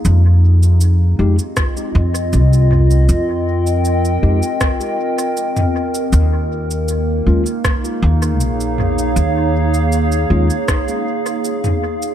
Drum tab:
SH |x--xx--xxx-xxx-x|x--xxx-xxx-xxx-x|x--xx--xxx-xxx-x|x--xxx-xxx-xxx-x|
SD |--------r-------|--------r-------|--------r-------|--------r-------|
T2 |--------------o-|-------------o--|--------------o-|-------------o--|
BD |--------o-------|--------o-------|--------o-------|--------o-------|